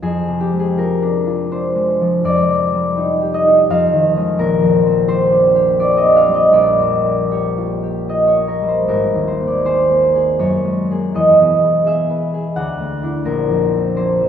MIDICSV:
0, 0, Header, 1, 2, 480
1, 0, Start_track
1, 0, Tempo, 736196
1, 15, Time_signature, 3, 2, 24, 8
1, 2415, Tempo, 695249
1, 3855, Tempo, 773196
1, 6255, Tempo, 744417
1, 7215, Tempo, 708383
1, 9345, End_track
2, 0, Start_track
2, 0, Title_t, "Harp"
2, 0, Program_c, 0, 46
2, 0, Note_on_c, 0, 53, 37
2, 0, Note_on_c, 0, 56, 34
2, 0, Note_on_c, 0, 60, 38
2, 15, Note_on_c, 0, 41, 56
2, 17, Note_on_c, 0, 68, 85
2, 181, Note_on_c, 0, 48, 41
2, 265, Note_on_c, 0, 67, 74
2, 335, Note_off_c, 0, 56, 0
2, 343, Note_on_c, 0, 56, 40
2, 379, Note_off_c, 0, 68, 0
2, 387, Note_on_c, 0, 68, 73
2, 469, Note_off_c, 0, 67, 0
2, 504, Note_on_c, 0, 65, 43
2, 508, Note_on_c, 0, 70, 74
2, 589, Note_off_c, 0, 68, 0
2, 666, Note_on_c, 0, 62, 47
2, 714, Note_off_c, 0, 53, 0
2, 762, Note_off_c, 0, 60, 0
2, 820, Note_off_c, 0, 65, 0
2, 828, Note_on_c, 0, 65, 50
2, 981, Note_off_c, 0, 62, 0
2, 987, Note_on_c, 0, 62, 49
2, 989, Note_on_c, 0, 72, 76
2, 1138, Note_off_c, 0, 56, 0
2, 1146, Note_on_c, 0, 56, 44
2, 1310, Note_on_c, 0, 53, 46
2, 1326, Note_off_c, 0, 70, 0
2, 1456, Note_off_c, 0, 41, 0
2, 1461, Note_on_c, 0, 41, 60
2, 1467, Note_on_c, 0, 74, 89
2, 1486, Note_off_c, 0, 56, 0
2, 1488, Note_off_c, 0, 48, 0
2, 1490, Note_off_c, 0, 62, 0
2, 1618, Note_on_c, 0, 48, 41
2, 1778, Note_on_c, 0, 55, 42
2, 1935, Note_on_c, 0, 63, 50
2, 2096, Note_on_c, 0, 67, 51
2, 2178, Note_on_c, 0, 75, 92
2, 2253, Note_off_c, 0, 63, 0
2, 2261, Note_on_c, 0, 63, 57
2, 2406, Note_off_c, 0, 41, 0
2, 2413, Note_on_c, 0, 41, 69
2, 2415, Note_on_c, 0, 77, 100
2, 2430, Note_off_c, 0, 48, 0
2, 2431, Note_off_c, 0, 67, 0
2, 2432, Note_off_c, 0, 55, 0
2, 2436, Note_off_c, 0, 72, 0
2, 2572, Note_on_c, 0, 51, 52
2, 2676, Note_off_c, 0, 74, 0
2, 2734, Note_on_c, 0, 56, 50
2, 2737, Note_on_c, 0, 61, 57
2, 2887, Note_on_c, 0, 34, 63
2, 2890, Note_on_c, 0, 70, 94
2, 2908, Note_off_c, 0, 51, 0
2, 2908, Note_off_c, 0, 75, 0
2, 2909, Note_off_c, 0, 41, 0
2, 2910, Note_off_c, 0, 61, 0
2, 2910, Note_off_c, 0, 63, 0
2, 3047, Note_on_c, 0, 41, 53
2, 3205, Note_on_c, 0, 60, 44
2, 3363, Note_on_c, 0, 67, 56
2, 3367, Note_on_c, 0, 72, 96
2, 3427, Note_off_c, 0, 65, 0
2, 3530, Note_on_c, 0, 62, 52
2, 3683, Note_off_c, 0, 67, 0
2, 3691, Note_on_c, 0, 67, 61
2, 3851, Note_off_c, 0, 62, 0
2, 3857, Note_on_c, 0, 62, 55
2, 3860, Note_on_c, 0, 74, 91
2, 3929, Note_off_c, 0, 53, 0
2, 3968, Note_on_c, 0, 75, 78
2, 4002, Note_off_c, 0, 60, 0
2, 4009, Note_on_c, 0, 60, 47
2, 4079, Note_off_c, 0, 77, 0
2, 4087, Note_on_c, 0, 77, 93
2, 4162, Note_on_c, 0, 55, 47
2, 4166, Note_off_c, 0, 75, 0
2, 4200, Note_on_c, 0, 75, 76
2, 4286, Note_off_c, 0, 77, 0
2, 4307, Note_off_c, 0, 34, 0
2, 4307, Note_off_c, 0, 74, 0
2, 4312, Note_on_c, 0, 34, 65
2, 4317, Note_on_c, 0, 74, 84
2, 4340, Note_off_c, 0, 41, 0
2, 4340, Note_off_c, 0, 72, 0
2, 4341, Note_off_c, 0, 56, 0
2, 4342, Note_off_c, 0, 60, 0
2, 4342, Note_off_c, 0, 62, 0
2, 4404, Note_off_c, 0, 75, 0
2, 4477, Note_on_c, 0, 41, 44
2, 4634, Note_on_c, 0, 58, 33
2, 4794, Note_off_c, 0, 67, 0
2, 4800, Note_on_c, 0, 67, 45
2, 4802, Note_on_c, 0, 73, 61
2, 4966, Note_on_c, 0, 65, 37
2, 5116, Note_off_c, 0, 67, 0
2, 5123, Note_on_c, 0, 67, 46
2, 5275, Note_off_c, 0, 65, 0
2, 5281, Note_on_c, 0, 65, 39
2, 5285, Note_on_c, 0, 75, 66
2, 5389, Note_off_c, 0, 73, 0
2, 5396, Note_on_c, 0, 73, 59
2, 5408, Note_off_c, 0, 70, 0
2, 5431, Note_off_c, 0, 58, 0
2, 5438, Note_on_c, 0, 58, 36
2, 5485, Note_off_c, 0, 75, 0
2, 5523, Note_on_c, 0, 70, 70
2, 5601, Note_off_c, 0, 55, 0
2, 5605, Note_off_c, 0, 73, 0
2, 5608, Note_on_c, 0, 55, 35
2, 5650, Note_on_c, 0, 72, 55
2, 5732, Note_off_c, 0, 70, 0
2, 5774, Note_on_c, 0, 32, 55
2, 5780, Note_on_c, 0, 70, 69
2, 5785, Note_off_c, 0, 34, 0
2, 5785, Note_off_c, 0, 74, 0
2, 5786, Note_off_c, 0, 41, 0
2, 5789, Note_off_c, 0, 67, 0
2, 5790, Note_off_c, 0, 65, 0
2, 5791, Note_off_c, 0, 55, 0
2, 5859, Note_off_c, 0, 72, 0
2, 5939, Note_on_c, 0, 39, 39
2, 6019, Note_on_c, 0, 72, 62
2, 6095, Note_off_c, 0, 58, 0
2, 6103, Note_on_c, 0, 58, 39
2, 6142, Note_on_c, 0, 74, 64
2, 6220, Note_off_c, 0, 72, 0
2, 6253, Note_on_c, 0, 68, 45
2, 6255, Note_on_c, 0, 72, 77
2, 6340, Note_off_c, 0, 74, 0
2, 6407, Note_off_c, 0, 58, 0
2, 6415, Note_on_c, 0, 58, 42
2, 6568, Note_off_c, 0, 68, 0
2, 6575, Note_on_c, 0, 68, 49
2, 6730, Note_on_c, 0, 42, 58
2, 6733, Note_on_c, 0, 73, 77
2, 6754, Note_off_c, 0, 72, 0
2, 6756, Note_off_c, 0, 39, 0
2, 6757, Note_off_c, 0, 32, 0
2, 6896, Note_on_c, 0, 56, 43
2, 7053, Note_off_c, 0, 58, 0
2, 7057, Note_off_c, 0, 68, 0
2, 7061, Note_on_c, 0, 58, 43
2, 7064, Note_on_c, 0, 68, 47
2, 7215, Note_on_c, 0, 40, 55
2, 7222, Note_on_c, 0, 75, 93
2, 7232, Note_off_c, 0, 42, 0
2, 7233, Note_off_c, 0, 73, 0
2, 7236, Note_off_c, 0, 58, 0
2, 7239, Note_off_c, 0, 70, 0
2, 7381, Note_on_c, 0, 47, 43
2, 7545, Note_on_c, 0, 59, 41
2, 7693, Note_off_c, 0, 68, 0
2, 7699, Note_on_c, 0, 68, 47
2, 7705, Note_on_c, 0, 76, 81
2, 7861, Note_on_c, 0, 71, 53
2, 8014, Note_off_c, 0, 68, 0
2, 8022, Note_on_c, 0, 68, 51
2, 8039, Note_off_c, 0, 75, 0
2, 8174, Note_on_c, 0, 38, 54
2, 8175, Note_on_c, 0, 78, 93
2, 8197, Note_off_c, 0, 56, 0
2, 8197, Note_off_c, 0, 71, 0
2, 8198, Note_off_c, 0, 68, 0
2, 8199, Note_off_c, 0, 40, 0
2, 8199, Note_off_c, 0, 47, 0
2, 8200, Note_off_c, 0, 59, 0
2, 8332, Note_on_c, 0, 57, 44
2, 8493, Note_on_c, 0, 62, 48
2, 8496, Note_on_c, 0, 64, 46
2, 8643, Note_on_c, 0, 34, 59
2, 8644, Note_on_c, 0, 70, 81
2, 8664, Note_off_c, 0, 78, 0
2, 8665, Note_off_c, 0, 38, 0
2, 8665, Note_off_c, 0, 57, 0
2, 8668, Note_off_c, 0, 64, 0
2, 8668, Note_off_c, 0, 76, 0
2, 8808, Note_on_c, 0, 41, 41
2, 8967, Note_on_c, 0, 60, 37
2, 9123, Note_on_c, 0, 58, 42
2, 9127, Note_on_c, 0, 72, 73
2, 9281, Note_off_c, 0, 41, 0
2, 9289, Note_on_c, 0, 41, 40
2, 9345, Note_off_c, 0, 34, 0
2, 9345, Note_off_c, 0, 41, 0
2, 9345, Note_off_c, 0, 58, 0
2, 9345, Note_off_c, 0, 60, 0
2, 9345, Note_off_c, 0, 62, 0
2, 9345, Note_off_c, 0, 70, 0
2, 9345, Note_off_c, 0, 72, 0
2, 9345, End_track
0, 0, End_of_file